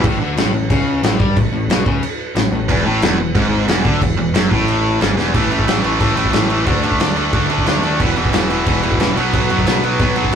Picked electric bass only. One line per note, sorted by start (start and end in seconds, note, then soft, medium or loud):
0.04 0.19 A1 loud
0.20 0.36 D2 medium
0.37 0.52 A1 loud
0.53 0.69 A1 medium
0.70 1.01 C#2 medium
1.03 1.18 A1 loud
1.20 1.35 G2 loud
1.37 1.51 A1 medium
1.52 1.67 A1 medium
1.68 1.84 B1 loud
1.86 2.01 C#2 loud
2.35 2.51 A1 medium
2.51 2.67 A1 medium
2.69 2.84 E1 loud
2.85 3.00 A1 medium
3.01 3.17 E1 loud
3.17 3.33 E1 medium
3.35 3.66 G#1 medium
3.68 3.83 E1 medium
3.85 4.00 D2 loud
4.01 4.17 E1 medium
4.17 4.33 E1 medium
4.34 4.50 F#1 loud
4.51 4.97 A1 loud
5.01 5.16 G#1 loud
5.17 5.33 E1 medium
5.34 5.49 A1 medium
5.51 5.66 A1 medium
5.67 5.82 A1 medium
5.84 5.98 A1 medium
6.01 6.15 A1 medium
6.17 6.32 A1 medium
6.33 6.67 A1 medium
6.67 6.82 D2 medium
6.83 6.98 A2 medium
7.00 7.15 D2 medium
7.16 7.31 D2 medium
7.33 7.48 D2 medium
7.49 7.64 D2 medium
7.65 7.81 D2 loud
7.82 7.98 D#2 medium
8.00 8.15 E1 loud
8.16 8.31 E1 medium
8.33 8.48 E1 medium
8.50 8.65 E1 medium
8.66 8.81 E1 medium
8.84 8.98 E1 medium
9.00 9.15 E1 medium
9.16 9.31 B1 medium
9.33 9.48 B1 loud
9.50 9.65 F#2 medium
9.66 9.81 B1 medium
9.83 9.98 B1 medium
10.00 10.14 B1 medium
10.16 10.31 B1 medium